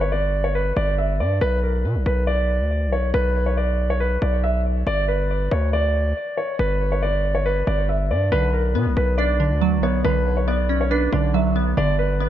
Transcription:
Already playing: G1
0.01 C#5
0.12 D5
0.44 C#5
0.55 B4
0.77 G1 D5
0.98 E5
1.20 G2 D5
1.41 B1 B4
1.63 A#4
1.84 B2
1.95 B1
2.06 B1 B4
2.27 D5
2.60 D2
2.87 B1
2.92 C#5
3.14 B1 B4
3.46 C#5
3.57 D5
3.90 C#5
4.00 B4
4.22 B1 D5
4.44 E5
4.87 G1 D5
5.08 B4
5.51 D2 C#5
5.73 D5
6.37 C#5
6.59 G1 B4
6.92 C#5
7.03 D5
7.35 C#5
7.46 B4
7.67 G1 D5
7.89 E5
8.10 G2 D5
8.32 B1 D3 B4
8.53 A#4
8.75 B2 B3
8.86 B1
8.97 B1 B4
9.18 D4 D5
9.40 D3
9.51 D2
9.61 F#3
9.78 B1
9.83 B3 C#5
10.04 B1 D3 B4
10.37 C#5
10.48 B3 D5
10.69 C#4
10.81 C#5
10.91 D4 B4
11.13 B1 D3 D5
11.34 F#3 E5
11.56 B3
11.77 G1 D3 D5
11.99 B4
12.20 B3

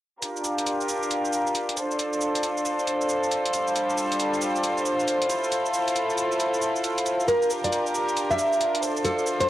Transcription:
0.22 D4 F4 G4 A#4, closed hi-hat, shaker
0.36 shaker
0.44 shaker
0.58 closed hi-hat, shaker
0.67 closed hi-hat, shaker
0.81 shaker
0.89 shaker
1.03 shaker
1.11 closed hi-hat, shaker
1.25 shaker
1.33 shaker
1.47 shaker
1.55 closed hi-hat, shaker
1.69 closed hi-hat
1.77 D4 F4 A4 C5, closed hi-hat, shaker
1.91 shaker
1.99 closed hi-hat, shaker
2.13 shaker
2.21 shaker
2.35 closed hi-hat, shaker
2.43 closed hi-hat, shaker
2.57 shaker
2.65 shaker
2.79 shaker
2.87 closed hi-hat, shaker
3.01 shaker
3.09 shaker
3.23 shaker
3.32 closed hi-hat, shaker
3.46 closed hi-hat
3.53 G3 D4, closed hi-hat, shaker
3.67 shaker
3.76 closed hi-hat, shaker
3.90 shaker
3.98 shaker
4.12 closed hi-hat, shaker
4.20 closed hi-hat, shaker
4.34 shaker
4.42 shaker
4.56 shaker
4.64 closed hi-hat, shaker
4.78 shaker
4.86 shaker
5.00 shaker
5.08 closed hi-hat, shaker
5.22 closed hi-hat
5.30 E4 A4, closed hi-hat, shaker
5.44 shaker
5.52 closed hi-hat, shaker
5.66 shaker
5.74 shaker
5.88 closed hi-hat, shaker
5.96 closed hi-hat, shaker
6.10 shaker
6.18 closed hi-hat, shaker
6.32 shaker
6.40 closed hi-hat, shaker
6.54 shaker
6.62 shaker
6.76 shaker
6.84 closed hi-hat, shaker
6.98 closed hi-hat, shaker
7.06 closed hi-hat, shaker
7.20 shaker
7.28 D4 G4 A#4, closed hi-hat, shaker
7.42 shaker
7.50 shaker
7.64 D5, closed hi-hat, shaker
7.73 closed hi-hat, shaker
7.87 shaker
7.95 shaker
8.09 shaker
8.17 closed hi-hat, shaker
8.31 E5, shaker
8.39 shaker
8.53 shaker
8.61 closed hi-hat, shaker
8.75 closed hi-hat
8.83 F4 A4 C5, closed hi-hat, shaker
8.97 shaker
9.05 A4, closed hi-hat, shaker
9.19 shaker
9.27 shaker
9.41 C5, closed hi-hat, shaker

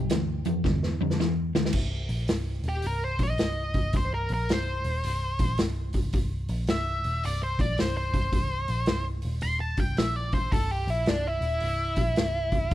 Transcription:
0.10 D2 G2 E3, snare, closed hi-hat
0.45 F2 G2 E3, closed hi-hat
0.64 E2 G2 D3, kick, snare
0.83 snare
1.01 F2 G2 D3
1.10 snare
1.20 E2 G2 E3, snare
1.55 D2 G2 E3, snare
1.65 snare
1.73 C1, kick, crash
2.09 A#1, open hi-hat
2.28 C1, snare, open hi-hat
2.64 D#1, open hi-hat
2.69 G4
2.82 C1, open hi-hat
2.87 A#4
3.04 C5
3.19 A#1, kick, open hi-hat
3.23 D#5
3.38 C1, snare, open hi-hat
3.74 C1, kick, open hi-hat
3.93 C1, kick, open hi-hat
3.97 C5
4.14 A#4
4.29 A#1, open hi-hat
4.34 A#4
4.49 C1 C5, snare, open hi-hat
4.84 D#1, open hi-hat
5.04 C1, open hi-hat
5.39 A#1, kick, open hi-hat
5.58 C1, snare, open hi-hat
5.93 C1, kick, open hi-hat
6.13 C1, kick, open hi-hat
6.49 A#1, open hi-hat
6.67 C1 E5, snare, open hi-hat
7.04 D#1, open hi-hat
7.24 C1 D5, open hi-hat
7.43 C5
7.59 A#1 D5, kick, open hi-hat
7.78 C1 C5, snare, open hi-hat
7.97 C5
8.14 C1, kick, open hi-hat
8.32 C1, kick, open hi-hat
8.68 A#1, open hi-hat
8.86 C1, snare, open hi-hat
9.22 D#1, open hi-hat
9.41 D#1 C6, open hi-hat
9.61 A5
9.77 C1 G5, kick, open hi-hat
9.97 A#1 E5, snare, open hi-hat
10.16 D5
10.32 C5, kick, open hi-hat
10.52 C1 A4, kick, open hi-hat
10.71 G4
10.87 A#1 E4, open hi-hat
11.06 C1 D4, snare, open hi-hat
11.27 E4
11.41 D#1, open hi-hat
11.60 C1, open hi-hat
11.96 A#1, kick, open hi-hat
12.16 C1, snare, open hi-hat
12.52 C1, kick, open hi-hat
12.71 open hi-hat

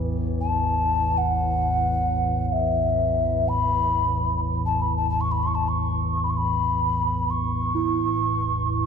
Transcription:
Already playing: A1 E2
0.41 A5
1.18 F#5
2.45 F#5
2.52 E5
3.49 B5
4.66 A5
4.82 B5
4.97 A5
5.10 A5
5.21 C#6
5.31 B5
5.43 C#6
5.55 A5
5.68 C#6
6.24 B5
6.30 C#6
6.37 B5
7.30 C#6
7.56 A1 E2
7.75 E4

